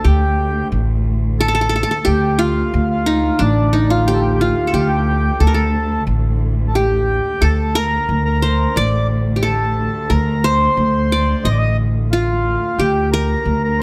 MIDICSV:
0, 0, Header, 1, 5, 480
1, 0, Start_track
1, 0, Tempo, 670391
1, 1472, Time_signature, 4, 2, 24, 8
1, 9900, End_track
2, 0, Start_track
2, 0, Title_t, "Accordion"
2, 0, Program_c, 0, 21
2, 38, Note_on_c, 0, 67, 67
2, 487, Note_off_c, 0, 67, 0
2, 1000, Note_on_c, 0, 69, 91
2, 1474, Note_on_c, 0, 67, 81
2, 1490, Note_off_c, 0, 69, 0
2, 1715, Note_on_c, 0, 65, 83
2, 1720, Note_off_c, 0, 67, 0
2, 2065, Note_off_c, 0, 65, 0
2, 2076, Note_on_c, 0, 65, 76
2, 2435, Note_on_c, 0, 62, 76
2, 2444, Note_off_c, 0, 65, 0
2, 2792, Note_on_c, 0, 65, 73
2, 2804, Note_off_c, 0, 62, 0
2, 2912, Note_on_c, 0, 67, 83
2, 2915, Note_off_c, 0, 65, 0
2, 2960, Note_on_c, 0, 69, 62
2, 2963, Note_off_c, 0, 67, 0
2, 3010, Note_off_c, 0, 69, 0
2, 3016, Note_on_c, 0, 67, 75
2, 3096, Note_off_c, 0, 67, 0
2, 3107, Note_on_c, 0, 67, 48
2, 3151, Note_on_c, 0, 65, 74
2, 3154, Note_off_c, 0, 67, 0
2, 3374, Note_off_c, 0, 65, 0
2, 3391, Note_on_c, 0, 67, 71
2, 3440, Note_on_c, 0, 65, 68
2, 3442, Note_off_c, 0, 67, 0
2, 3490, Note_off_c, 0, 65, 0
2, 3498, Note_on_c, 0, 67, 81
2, 3873, Note_on_c, 0, 69, 68
2, 3886, Note_off_c, 0, 67, 0
2, 3955, Note_off_c, 0, 69, 0
2, 3966, Note_on_c, 0, 69, 71
2, 4322, Note_off_c, 0, 69, 0
2, 4783, Note_on_c, 0, 69, 43
2, 4832, Note_off_c, 0, 69, 0
2, 4834, Note_on_c, 0, 67, 69
2, 5323, Note_on_c, 0, 69, 76
2, 5327, Note_off_c, 0, 67, 0
2, 5557, Note_on_c, 0, 70, 80
2, 5564, Note_off_c, 0, 69, 0
2, 5897, Note_off_c, 0, 70, 0
2, 5908, Note_on_c, 0, 70, 77
2, 6272, Note_on_c, 0, 74, 83
2, 6281, Note_off_c, 0, 70, 0
2, 6495, Note_off_c, 0, 74, 0
2, 6752, Note_on_c, 0, 69, 66
2, 7236, Note_on_c, 0, 70, 72
2, 7247, Note_off_c, 0, 69, 0
2, 7481, Note_off_c, 0, 70, 0
2, 7482, Note_on_c, 0, 72, 77
2, 8194, Note_on_c, 0, 75, 81
2, 8219, Note_off_c, 0, 72, 0
2, 8240, Note_off_c, 0, 75, 0
2, 8241, Note_on_c, 0, 74, 70
2, 8292, Note_off_c, 0, 74, 0
2, 8296, Note_on_c, 0, 75, 85
2, 8425, Note_off_c, 0, 75, 0
2, 8677, Note_on_c, 0, 65, 74
2, 9155, Note_on_c, 0, 67, 74
2, 9171, Note_off_c, 0, 65, 0
2, 9379, Note_off_c, 0, 67, 0
2, 9396, Note_on_c, 0, 70, 84
2, 9753, Note_off_c, 0, 70, 0
2, 9764, Note_on_c, 0, 70, 72
2, 9878, Note_on_c, 0, 72, 81
2, 9884, Note_off_c, 0, 70, 0
2, 9900, Note_off_c, 0, 72, 0
2, 9900, End_track
3, 0, Start_track
3, 0, Title_t, "Qanun"
3, 0, Program_c, 1, 107
3, 0, Note_on_c, 1, 69, 82
3, 32, Note_on_c, 1, 67, 67
3, 387, Note_off_c, 1, 69, 0
3, 931, Note_off_c, 1, 67, 0
3, 1006, Note_on_c, 1, 69, 95
3, 1059, Note_off_c, 1, 69, 0
3, 1062, Note_on_c, 1, 69, 78
3, 1104, Note_off_c, 1, 69, 0
3, 1107, Note_on_c, 1, 69, 80
3, 1151, Note_off_c, 1, 69, 0
3, 1154, Note_on_c, 1, 69, 71
3, 1210, Note_off_c, 1, 69, 0
3, 1213, Note_on_c, 1, 69, 81
3, 1255, Note_off_c, 1, 69, 0
3, 1258, Note_on_c, 1, 69, 66
3, 1308, Note_off_c, 1, 69, 0
3, 1311, Note_on_c, 1, 69, 77
3, 1364, Note_off_c, 1, 69, 0
3, 1367, Note_on_c, 1, 69, 62
3, 1466, Note_on_c, 1, 67, 90
3, 1709, Note_on_c, 1, 65, 93
3, 2193, Note_on_c, 1, 63, 85
3, 2206, Note_off_c, 1, 69, 0
3, 2364, Note_off_c, 1, 67, 0
3, 2426, Note_on_c, 1, 62, 82
3, 2469, Note_off_c, 1, 63, 0
3, 2670, Note_on_c, 1, 63, 73
3, 2672, Note_off_c, 1, 65, 0
3, 2713, Note_off_c, 1, 62, 0
3, 2795, Note_on_c, 1, 65, 76
3, 2919, Note_on_c, 1, 67, 91
3, 3154, Note_off_c, 1, 65, 0
3, 3157, Note_on_c, 1, 65, 78
3, 3346, Note_on_c, 1, 69, 57
3, 3389, Note_off_c, 1, 67, 0
3, 3392, Note_on_c, 1, 67, 81
3, 3702, Note_off_c, 1, 63, 0
3, 3866, Note_off_c, 1, 69, 0
3, 3869, Note_on_c, 1, 69, 64
3, 3917, Note_on_c, 1, 70, 60
3, 3960, Note_off_c, 1, 69, 0
3, 3969, Note_on_c, 1, 69, 64
3, 4012, Note_off_c, 1, 70, 0
3, 4121, Note_off_c, 1, 65, 0
3, 4291, Note_off_c, 1, 67, 0
3, 4808, Note_off_c, 1, 69, 0
3, 4835, Note_on_c, 1, 67, 78
3, 5310, Note_on_c, 1, 69, 80
3, 5551, Note_on_c, 1, 70, 98
3, 5594, Note_off_c, 1, 69, 0
3, 5733, Note_off_c, 1, 67, 0
3, 6031, Note_on_c, 1, 72, 83
3, 6280, Note_on_c, 1, 74, 94
3, 6361, Note_off_c, 1, 70, 0
3, 6703, Note_on_c, 1, 67, 50
3, 6749, Note_on_c, 1, 69, 75
3, 6787, Note_off_c, 1, 72, 0
3, 6985, Note_off_c, 1, 74, 0
3, 7230, Note_on_c, 1, 70, 79
3, 7273, Note_off_c, 1, 69, 0
3, 7477, Note_on_c, 1, 72, 90
3, 7602, Note_off_c, 1, 67, 0
3, 7964, Note_on_c, 1, 74, 85
3, 8040, Note_off_c, 1, 70, 0
3, 8199, Note_on_c, 1, 75, 83
3, 8232, Note_off_c, 1, 72, 0
3, 8242, Note_off_c, 1, 74, 0
3, 8684, Note_on_c, 1, 65, 86
3, 8880, Note_off_c, 1, 75, 0
3, 9161, Note_on_c, 1, 67, 79
3, 9405, Note_on_c, 1, 70, 97
3, 9648, Note_off_c, 1, 65, 0
3, 9900, Note_off_c, 1, 67, 0
3, 9900, Note_off_c, 1, 70, 0
3, 9900, End_track
4, 0, Start_track
4, 0, Title_t, "Cello section"
4, 0, Program_c, 2, 48
4, 0, Note_on_c, 2, 38, 54
4, 1474, Note_off_c, 2, 38, 0
4, 1483, Note_on_c, 2, 38, 58
4, 5301, Note_off_c, 2, 38, 0
4, 5310, Note_on_c, 2, 38, 53
4, 9150, Note_off_c, 2, 38, 0
4, 9159, Note_on_c, 2, 38, 55
4, 9900, Note_off_c, 2, 38, 0
4, 9900, End_track
5, 0, Start_track
5, 0, Title_t, "Upright bass"
5, 0, Program_c, 3, 32
5, 34, Note_on_c, 3, 38, 95
5, 431, Note_off_c, 3, 38, 0
5, 514, Note_on_c, 3, 33, 92
5, 1307, Note_off_c, 3, 33, 0
5, 1476, Note_on_c, 3, 38, 88
5, 1871, Note_off_c, 3, 38, 0
5, 1959, Note_on_c, 3, 38, 92
5, 2353, Note_off_c, 3, 38, 0
5, 2437, Note_on_c, 3, 33, 92
5, 3229, Note_off_c, 3, 33, 0
5, 3389, Note_on_c, 3, 38, 85
5, 3787, Note_off_c, 3, 38, 0
5, 3868, Note_on_c, 3, 38, 93
5, 4267, Note_off_c, 3, 38, 0
5, 4344, Note_on_c, 3, 33, 95
5, 5141, Note_off_c, 3, 33, 0
5, 5307, Note_on_c, 3, 38, 94
5, 5706, Note_off_c, 3, 38, 0
5, 5791, Note_on_c, 3, 38, 88
5, 6188, Note_off_c, 3, 38, 0
5, 6272, Note_on_c, 3, 33, 94
5, 7066, Note_off_c, 3, 33, 0
5, 7232, Note_on_c, 3, 38, 85
5, 7629, Note_off_c, 3, 38, 0
5, 7711, Note_on_c, 3, 38, 85
5, 8109, Note_off_c, 3, 38, 0
5, 8196, Note_on_c, 3, 33, 91
5, 8990, Note_off_c, 3, 33, 0
5, 9154, Note_on_c, 3, 38, 86
5, 9552, Note_off_c, 3, 38, 0
5, 9633, Note_on_c, 3, 38, 85
5, 9900, Note_off_c, 3, 38, 0
5, 9900, End_track
0, 0, End_of_file